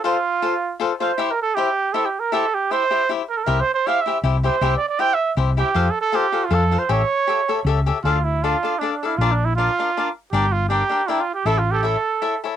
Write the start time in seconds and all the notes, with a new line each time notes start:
0.04 F4 A4 C5 F5
0.42 F4 A4 C5 F5
0.80 F4 A4 C5 F5
1.00 F4 A4 C5 F5
1.18 E4 G4 C5 E5
1.31 A#4
1.42 A4
1.55 E4 G4 C5 E5
1.93 E4 G4 A4 C5 E5
2.06 G4
2.20 A#4
2.32 E4 G4 A4 C5 E5
2.54 G4
2.71 E4 G4 C5 E5
2.90 E4 G4 C5 E5
3.09 E4 G4 C5 E5
3.30 A#4
3.37 A4
3.44 C2 E4 G4 A#4 C5 E5
3.60 C5
3.74 C5
3.87 E4 G4 C5 E5 F5
4.01 E5
4.06 E4 G4 C5 E5
4.24 C2 E4 G4 C5 E5
4.44 E4 G4 C5 E5
4.61 C2 E4 G4 C5 E5
4.77 D5
4.89 D5
4.99 E4 G4 C5 E5 G5
5.14 E5
5.37 C2 E4 G4 C5 E5
5.57 E4 G4 C5 E5
5.74 F2 F4 A4 C5 F5
5.90 A4
6.01 A4
6.12 F4 G4 A4 C5 F5
6.32 F4 A4 C5 F5
6.45 F4
6.51 F2 F4 A4 C5 F5
6.71 F4 A4 C5 F5
6.79 C5
6.89 A1 G4 A4 C#5 E5
7.27 G4 A4 C#5 E5
7.48 G4 A4 C#5 E5
7.65 C#2 G4 A4 C#5 E5
7.86 G4 A4 C#5 E5
8.04 D2 D4 F4 A4 D5 F5
8.24 E4
8.43 D4 F4 A4 D5 F5
8.63 D4 A4 D5 F5
8.79 D4 A4
8.83 D5 F5
8.93 D4
9.03 D4 E4 A4 D5 F5
9.18 A#1 D4 F4 A#4 D5
9.22 F5
9.32 D4
9.45 E4
9.56 D4 F4 A#4 D5 F5
9.79 D4 A#4 D5 F5
9.97 D4 A#4 D5 F5
10.31 G1 D4 G4 A#4 D5 G5
10.52 F4
10.70 D4 G4 A#4 D5 G5
10.89 D4 A#4 D5 G5
11.08 D4 E4 A#4 D5 G5
11.20 F4
11.35 G4
11.45 A1 E4 A4 C#5 E5
11.58 F4
11.71 G4 A4
11.78 G4
11.83 E4 A4 C#5 E5
12.22 E4 A4 C#5 E5
12.44 E4 A4 C#5 E5